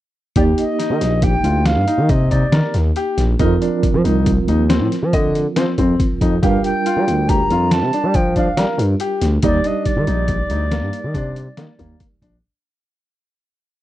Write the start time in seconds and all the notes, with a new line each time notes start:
0.36 D#2 A#3 D#4 G4 D5, kick, closed hi-hat
0.58 D#5, closed hi-hat
0.79 D#4, snare, closed hi-hat
0.90 D#3
1.01 A#1, snare, closed hi-hat
1.22 G4 G5, kick, closed hi-hat
1.44 D2 F4, closed hi-hat
1.66 F5, snare, closed hi-hat
1.76 G2
1.87 D#4, closed hi-hat
1.98 D#3
2.09 C3 D#5, kick, closed hi-hat
2.31 D#4 D5, kick, closed hi-hat
2.52 D#3 A#4, snare, closed hi-hat
2.74 D#2, snare, closed hi-hat
2.96 G4, closed hi-hat
3.18 A#1, snare, closed hi-hat
3.39 F2 F3 C4 D#4 F4 A#4, kick, closed hi-hat
3.62 D4, closed hi-hat
3.83 kick, closed hi-hat
3.94 F3
4.04 C2 D#4, closed hi-hat
4.26 kick, closed hi-hat
4.48 D#2 D#4, closed hi-hat
4.69 C4, snare, closed hi-hat
4.80 A2
4.92 snare, closed hi-hat
5.02 F3
5.13 D3 D#5, kick, closed hi-hat
5.35 closed hi-hat
5.56 F3 C4, snare, closed hi-hat
5.78 F2 C4, kick, closed hi-hat
6.00 kick, closed hi-hat
6.21 F2 D#4, kick, closed hi-hat
6.43 G2 G3 D4 F4 G4 A#4 F5, kick, closed hi-hat
6.64 G5, closed hi-hat
6.86 F4, closed hi-hat
6.96 G3
7.07 D2, closed hi-hat
7.29 G4 A#5, kick, closed hi-hat
7.50 F2 F4, closed hi-hat
7.71 A5, snare, closed hi-hat
7.82 C3
7.93 D4, closed hi-hat
8.04 G3
8.14 F3 G5, kick, closed hi-hat
8.36 D4 F5, kick, closed hi-hat
8.57 G3 A#4, snare, closed hi-hat
8.78 G2, closed hi-hat
9.00 G4, closed hi-hat
9.21 D2, snare, closed hi-hat
9.42 D#2 G3 D#4 G4 D5, kick, closed hi-hat
9.64 D4 D#5, closed hi-hat
9.85 D5, kick, snare, closed hi-hat
9.96 D#3
10.07 A#1 D#4, closed hi-hat
10.28 kick, closed hi-hat
10.50 D2 D#4, closed hi-hat
10.71 A#3, snare, closed hi-hat
10.82 G2
10.93 closed hi-hat
11.04 D#3
11.14 C3 D4, kick, closed hi-hat
11.36 closed hi-hat
11.57 D#3 A#3, snare, closed hi-hat
11.79 D#2 A#3, kick, closed hi-hat
12.00 kick, closed hi-hat
12.22 A#1 D4, kick, closed hi-hat